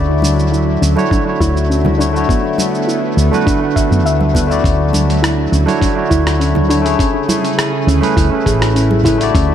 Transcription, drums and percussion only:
0.22 high conga medium
0.22 shaker medium
0.39 shaker soft
0.54 shaker soft
0.83 shaker medium
0.97 high conga medium
0.97 shaker soft
1.11 kick loud
1.11 shaker soft
1.41 kick medium
1.41 shaker medium
1.57 shaker soft
1.72 shaker soft
1.85 high conga medium
1.85 low conga medium
2.01 shaker medium
2.16 shaker soft
2.29 kick loud
2.29 shaker soft
2.58 high conga medium
2.58 shaker medium
2.75 shaker soft
2.89 shaker soft
3.18 shaker medium
3.33 high conga medium
3.33 shaker soft
3.47 kick loud
3.47 shaker soft
3.76 kick loud
3.76 shaker medium
3.92 shaker soft
4.06 shaker soft
4.21 high conga medium
4.35 kick medium
4.35 low conga medium
4.35 shaker medium
4.51 shaker soft
4.64 kick loud
4.64 open hi-hat soft
4.64 shaker soft
4.93 open hi-hat soft
4.93 high conga medium
4.93 shaker medium
5.10 open hi-hat soft
5.10 shaker soft
5.24 cross-stick medium
5.24 open hi-hat soft
5.24 shaker soft
5.53 shaker medium
5.67 open hi-hat soft
5.67 high conga medium
5.67 shaker soft
5.82 kick loud
5.82 open hi-hat soft
5.82 shaker soft
6.11 kick medium
6.11 shaker medium
6.27 cross-stick medium
6.27 open hi-hat soft
6.27 shaker soft
6.41 open hi-hat soft
6.41 shaker soft
6.55 high conga medium
6.55 low conga medium
6.70 open hi-hat soft
6.70 shaker medium
6.86 open hi-hat soft
6.86 shaker soft
6.99 kick loud
6.99 open hi-hat medium
6.99 shaker soft
7.29 open hi-hat soft
7.29 high conga medium
7.29 shaker medium
7.45 open hi-hat soft
7.45 shaker soft
7.59 cross-stick medium
7.59 open hi-hat medium
7.59 shaker soft
7.88 open hi-hat soft
7.88 shaker medium
8.02 open hi-hat soft
8.02 high conga medium
8.02 shaker soft
8.17 kick loud
8.17 open hi-hat medium
8.17 shaker soft
8.46 kick medium
8.46 open hi-hat soft
8.46 shaker medium
8.62 cross-stick medium
8.62 open hi-hat soft
8.62 shaker soft
8.76 open hi-hat soft
8.76 shaker soft
8.91 high conga medium
9.04 kick medium
9.04 open hi-hat soft
9.04 low conga medium
9.04 shaker medium
9.21 open hi-hat soft
9.21 shaker soft
9.35 kick loud
9.35 open hi-hat medium
9.35 shaker soft

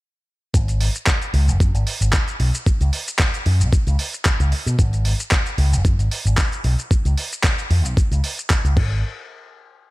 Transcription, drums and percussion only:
0.54 kick loud
0.54 closed hi-hat medium
0.54 shaker medium
0.68 closed hi-hat soft
0.68 shaker soft
0.81 open hi-hat loud
0.95 closed hi-hat soft
0.95 shaker medium
1.07 kick loud
1.07 clap loud
1.07 closed hi-hat medium
1.07 shaker medium
1.22 closed hi-hat soft
1.22 shaker soft
1.34 open hi-hat medium
1.48 closed hi-hat soft
1.48 shaker medium
1.60 kick loud
1.60 closed hi-hat medium
1.60 shaker medium
1.75 closed hi-hat soft
1.75 shaker soft
1.87 open hi-hat loud
2.01 closed hi-hat soft
2.01 shaker medium
2.13 kick loud
2.13 clap loud
2.13 closed hi-hat medium
2.13 shaker medium
2.28 closed hi-hat soft
2.28 shaker soft
2.40 open hi-hat medium
2.54 closed hi-hat soft
2.54 shaker medium
2.66 kick loud
2.66 closed hi-hat medium
2.66 shaker medium
2.81 closed hi-hat soft
2.81 shaker soft
2.93 open hi-hat loud
3.07 closed hi-hat soft
3.07 shaker medium
3.19 kick loud
3.19 clap loud
3.19 closed hi-hat medium
3.19 shaker medium
3.34 closed hi-hat soft
3.34 shaker soft
3.46 open hi-hat medium
3.60 closed hi-hat soft
3.60 shaker medium
3.72 kick loud
3.72 closed hi-hat medium
3.72 shaker medium
3.87 closed hi-hat soft
3.87 shaker soft
3.99 open hi-hat loud
4.13 closed hi-hat soft
4.13 shaker medium
4.25 kick loud
4.25 clap loud
4.25 closed hi-hat medium
4.25 shaker medium
4.40 closed hi-hat soft
4.40 shaker soft
4.52 open hi-hat loud
4.66 closed hi-hat soft
4.66 shaker medium
4.79 kick loud
4.79 closed hi-hat medium
4.79 shaker medium
4.93 closed hi-hat soft
4.93 shaker soft
5.05 open hi-hat loud
5.19 closed hi-hat soft
5.19 shaker medium
5.31 kick loud
5.31 clap loud
5.31 closed hi-hat medium
5.31 shaker medium
5.46 closed hi-hat soft
5.46 shaker soft
5.58 open hi-hat loud
5.73 closed hi-hat soft
5.73 shaker medium
5.85 kick loud
5.85 closed hi-hat medium
5.85 shaker medium
5.99 closed hi-hat soft
5.99 shaker soft
6.11 open hi-hat loud
6.26 closed hi-hat soft
6.26 shaker medium
6.37 kick loud
6.37 clap loud
6.37 closed hi-hat medium
6.37 shaker medium
6.52 closed hi-hat soft
6.52 shaker soft
6.64 open hi-hat loud
6.79 closed hi-hat soft
6.79 shaker medium
6.91 kick loud
6.91 closed hi-hat medium
6.91 shaker medium
7.05 closed hi-hat soft
7.05 shaker soft
7.17 open hi-hat loud
7.32 closed hi-hat soft
7.32 shaker medium
7.44 kick loud
7.44 clap loud
7.44 closed hi-hat medium
7.44 shaker medium
7.58 closed hi-hat soft
7.58 shaker soft
7.71 open hi-hat loud
7.85 closed hi-hat soft
7.85 shaker medium
7.97 kick loud
7.97 closed hi-hat medium
7.97 shaker medium
8.12 closed hi-hat soft
8.12 shaker soft
8.24 open hi-hat loud
8.38 closed hi-hat soft
8.38 shaker medium
8.50 kick loud
8.50 clap loud
8.50 closed hi-hat medium
8.50 shaker medium
8.65 closed hi-hat soft
8.65 shaker soft
8.77 kick loud
8.77 crash medium

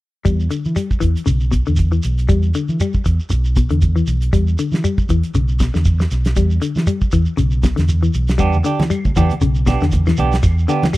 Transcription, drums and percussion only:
0.26 kick medium
0.26 closed hi-hat medium
0.26 shekere medium
0.40 shekere soft
0.51 closed hi-hat soft
0.51 shekere medium
0.65 shekere soft
0.76 closed hi-hat medium
0.76 shekere medium
0.91 kick medium
0.91 shekere soft
1.01 kick soft
1.01 closed hi-hat soft
1.01 shekere medium
1.16 closed hi-hat soft
1.16 shekere soft
1.26 closed hi-hat medium
1.26 shekere medium
1.41 shekere soft
1.52 kick medium
1.52 closed hi-hat soft
1.52 shekere medium
1.66 shekere soft
1.76 kick medium
1.76 closed hi-hat medium
1.76 shekere medium
1.92 shekere soft
2.03 closed hi-hat soft
2.03 shekere medium
2.18 closed hi-hat soft
2.18 shekere soft
2.29 kick medium
2.29 closed hi-hat medium
2.29 shekere medium
2.43 shekere soft
2.54 closed hi-hat soft
2.54 shekere medium
2.69 shekere soft
2.80 closed hi-hat medium
2.80 shekere medium
2.93 kick medium
2.93 shekere soft
3.05 kick soft
3.05 closed hi-hat soft
3.05 shekere medium
3.20 shekere soft
3.30 closed hi-hat medium
3.30 shekere medium
3.45 shekere soft
3.56 kick medium
3.56 closed hi-hat soft
3.56 shekere medium
3.70 closed hi-hat soft
3.70 shekere soft
3.81 kick medium
3.81 closed hi-hat soft
3.81 shekere medium
3.97 shekere soft
4.07 closed hi-hat soft
4.07 shekere medium
4.21 closed hi-hat soft
4.21 shekere soft
4.33 kick medium
4.33 closed hi-hat medium
4.33 shekere medium
4.47 shekere soft
4.58 closed hi-hat soft
4.58 shekere medium
4.72 snare medium
4.72 shekere soft
4.84 closed hi-hat medium
4.84 shekere medium
4.98 kick medium
4.98 shekere soft
5.09 kick medium
5.09 closed hi-hat soft
5.09 shekere medium
5.23 closed hi-hat soft
5.23 shekere soft
5.34 closed hi-hat medium
5.34 shekere medium
5.48 shekere soft
5.60 kick medium
5.60 snare medium
5.60 closed hi-hat soft
5.60 shekere medium
5.74 snare medium
5.74 shekere soft
5.85 kick medium
5.85 closed hi-hat medium
5.85 shekere medium
6.00 snare medium
6.00 shekere soft
6.11 snare soft
6.11 closed hi-hat soft
6.11 shekere medium
6.25 snare medium
6.25 closed hi-hat soft
6.25 shekere soft
6.36 kick medium
6.36 closed hi-hat medium
6.36 shekere medium
6.50 shekere soft
6.62 closed hi-hat soft
6.62 shekere medium
6.75 snare medium
6.75 shekere soft
6.87 closed hi-hat medium
6.87 shekere medium
7.01 kick medium
7.01 shekere soft
7.12 kick medium
7.12 closed hi-hat soft
7.12 shekere medium
7.26 shekere soft
7.37 closed hi-hat medium
7.37 shekere medium
7.51 shekere soft
7.63 kick medium
7.63 snare medium
7.63 closed hi-hat soft
7.63 shekere medium
7.77 snare medium
7.77 closed hi-hat soft
7.77 shekere soft
7.89 closed hi-hat medium
7.89 shekere medium
8.03 shekere soft
8.14 closed hi-hat soft
8.14 shekere medium
8.28 snare medium
8.28 closed hi-hat soft
8.28 shekere soft
8.38 kick medium
8.38 closed hi-hat medium
8.38 claves soft
8.38 shekere medium
8.53 high conga medium
8.53 shekere soft
8.64 closed hi-hat soft
8.64 shekere medium
8.80 snare medium
8.80 high conga medium
8.80 shekere soft
8.90 closed hi-hat medium
8.90 claves medium
8.90 shekere medium
9.05 kick medium
9.05 high conga medium
9.05 shekere soft
9.16 kick medium
9.16 closed hi-hat soft
9.16 high conga medium
9.16 claves medium
9.16 shekere medium
9.30 closed hi-hat soft
9.30 high conga medium
9.30 shekere soft
9.41 closed hi-hat medium
9.41 shekere medium
9.55 shekere soft
9.67 kick medium
9.67 snare medium
9.67 closed hi-hat soft
9.67 high conga medium
9.67 claves medium
9.67 shekere medium
9.81 snare medium
9.81 shekere soft
9.91 kick medium
9.91 closed hi-hat medium
9.91 high conga medium
9.91 shekere medium
10.06 snare medium
10.06 claves medium
10.06 shekere soft
10.17 closed hi-hat soft
10.17 high conga medium
10.17 shekere medium
10.32 snare medium
10.32 closed hi-hat soft
10.32 shekere soft
10.43 kick medium
10.43 closed hi-hat medium
10.43 claves medium
10.43 shekere medium
10.58 shekere soft
10.69 closed hi-hat soft
10.69 shekere medium
10.83 snare medium
10.83 high conga medium
10.83 shekere soft
10.94 closed hi-hat medium
10.94 claves medium
10.94 shekere medium

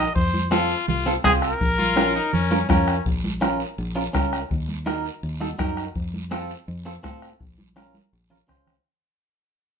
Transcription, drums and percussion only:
0.15 bombo low medium
0.15 high conga soft
0.15 long guiro medium
0.34 high conga medium
0.52 bombo rim medium
0.52 high conga medium
0.52 short guiro medium
0.70 short guiro medium
0.88 high conga soft
0.88 low conga medium
0.88 long guiro medium
1.24 bombo low medium
1.24 bombo rim medium
1.24 high conga medium
1.24 short guiro medium
1.42 bombo rim medium
1.42 short guiro medium
1.61 bombo low medium
1.61 high conga soft
1.61 long guiro medium
1.79 high conga medium
1.97 bombo rim medium
1.97 high conga medium
1.97 short guiro medium
2.15 short guiro medium
2.33 high conga soft
2.33 low conga medium
2.33 long guiro medium
2.51 high conga medium
2.69 bombo low medium
2.69 bombo rim medium
2.69 high conga medium
2.69 short guiro medium
2.88 bombo rim medium
2.88 short guiro medium
3.06 bombo low medium
3.06 high conga soft
3.06 long guiro medium
3.24 high conga medium
3.42 bombo rim medium
3.42 high conga medium
3.42 short guiro medium
3.60 short guiro medium
3.78 high conga soft
3.78 long guiro medium
4.14 bombo low medium
4.14 bombo rim medium
4.14 high conga medium
4.14 short guiro medium
4.33 bombo rim medium
4.33 short guiro medium
4.50 bombo low medium
4.50 high conga soft
4.50 long guiro medium
4.68 high conga medium
4.86 bombo rim medium
4.86 high conga medium
4.86 short guiro medium
5.05 short guiro medium
5.23 high conga soft
5.23 long guiro medium
5.41 high conga medium
5.59 bombo low medium
5.59 bombo rim medium
5.59 high conga medium
5.59 short guiro medium
5.77 bombo rim medium
5.77 short guiro medium
5.95 bombo low medium
5.95 high conga soft
5.95 long guiro medium
6.14 high conga medium
6.31 bombo rim medium
6.31 high conga medium
6.31 short guiro medium
6.50 short guiro medium
6.68 high conga soft
6.68 long guiro medium
7.04 bombo low medium
7.04 bombo rim medium
7.04 high conga medium
7.04 short guiro medium
7.22 bombo rim medium
7.22 short guiro medium
7.40 bombo low medium
7.40 high conga soft
7.40 long guiro medium
7.58 high conga medium
7.76 bombo rim medium
7.76 high conga medium
7.76 short guiro medium
7.94 high conga medium
7.94 short guiro medium
8.13 long guiro medium
8.31 low conga medium
8.49 bombo low medium
8.49 bombo rim medium
8.49 low conga medium
8.49 short guiro medium
8.67 bombo rim medium
8.67 low conga medium
8.67 short guiro medium

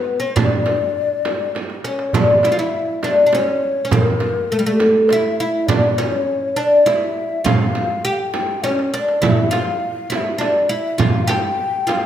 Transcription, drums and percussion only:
0.07 darbuka ka soft
0.37 frame drum medium
0.37 darbuka dum medium
0.66 darbuka tek medium
0.66 frame drum medium
1.25 darbuka tek medium
1.25 frame drum medium
1.41 darbuka ka soft
1.55 darbuka tek medium
1.55 frame drum medium
1.70 darbuka ka medium
1.84 darbuka tek medium
1.99 darbuka ka medium
2.13 darbuka dum medium
2.13 frame drum medium
2.43 darbuka tek medium
2.43 frame drum medium
3.03 darbuka tek medium
3.03 frame drum medium
3.18 darbuka ka soft
3.33 darbuka tek medium
3.33 frame drum medium
3.63 darbuka ka soft
3.91 frame drum medium
3.91 darbuka dum medium
4.20 darbuka tek medium
4.20 frame drum medium
4.80 darbuka tek medium
4.80 frame drum medium
4.95 darbuka ka soft
5.09 darbuka tek medium
5.09 frame drum medium
5.68 darbuka dum medium
5.68 frame drum medium
5.98 darbuka tek medium
5.98 frame drum medium
6.57 darbuka tek medium
6.72 darbuka ka soft
6.87 darbuka tek medium
6.87 frame drum medium
7.16 darbuka ka soft
7.46 darbuka dum medium
7.46 frame drum medium
7.75 darbuka tek medium
7.75 frame drum medium
8.34 darbuka tek medium
8.34 frame drum medium
8.50 darbuka ka soft
8.64 darbuka tek soft
8.64 frame drum medium
8.79 darbuka ka medium
8.94 darbuka tek medium
9.08 darbuka ka medium
9.23 frame drum medium
9.23 darbuka dum medium
9.53 darbuka tek medium
9.53 frame drum medium
10.12 darbuka tek medium
10.12 frame drum medium
10.41 darbuka tek medium
10.41 frame drum medium
10.72 darbuka ka soft
10.99 frame drum medium
10.99 darbuka dum medium
11.29 darbuka tek medium
11.29 frame drum medium
11.88 darbuka tek medium
11.88 frame drum medium

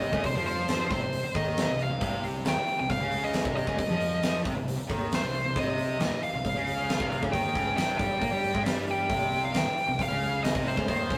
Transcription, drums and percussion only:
0.02 open hi-hat medium
0.13 kick loud
0.24 kick medium
0.24 open hi-hat medium
0.46 open hi-hat medium
0.68 snare loud
0.68 open hi-hat medium
0.91 kick loud
0.91 open hi-hat medium
1.13 open hi-hat medium
1.35 kick loud
1.35 open hi-hat soft
1.57 snare loud
1.57 open hi-hat medium
1.79 open hi-hat soft
2.01 kick loud
2.01 open hi-hat medium
2.24 open hi-hat soft
2.45 snare loud
2.45 open hi-hat medium
2.67 open hi-hat soft
2.90 kick medium
2.90 open hi-hat medium
3.12 open hi-hat medium
3.33 snare loud
3.33 open hi-hat medium
3.45 kick loud
3.57 open hi-hat medium
3.67 kick loud
3.78 kick medium
3.78 open hi-hat medium
4.01 open hi-hat medium
4.23 snare loud
4.23 open hi-hat medium
4.45 kick loud
4.45 open hi-hat medium
4.68 open hi-hat medium
4.90 kick medium
4.90 open hi-hat medium
5.12 snare loud
5.12 open hi-hat medium
5.34 open hi-hat soft
5.56 kick medium
5.56 open hi-hat medium
5.78 open hi-hat soft
6.00 snare medium
6.00 open hi-hat medium
6.23 open hi-hat soft
6.45 kick medium
6.45 open hi-hat medium
6.67 open hi-hat soft
6.89 snare loud
6.89 open hi-hat medium
7.00 kick medium
7.12 open hi-hat soft
7.23 kick medium
7.34 kick medium
7.34 open hi-hat medium
7.55 kick medium
7.55 open hi-hat soft
7.78 snare loud
7.78 open hi-hat medium
7.99 kick loud
7.99 open hi-hat medium
8.22 kick medium
8.22 open hi-hat medium
8.44 open hi-hat soft
8.55 kick medium
8.66 snare loud
8.66 open hi-hat medium
8.88 open hi-hat medium
9.10 kick loud
9.10 open hi-hat medium
9.32 open hi-hat medium
9.54 snare loud
9.54 open hi-hat medium
9.78 open hi-hat medium
9.99 kick medium
9.99 open hi-hat medium
10.22 open hi-hat soft
10.44 snare loud
10.44 open hi-hat medium
10.55 kick loud
10.67 open hi-hat soft
10.77 kick medium
10.88 kick medium
10.88 open hi-hat medium
11.10 kick medium
11.10 open hi-hat medium

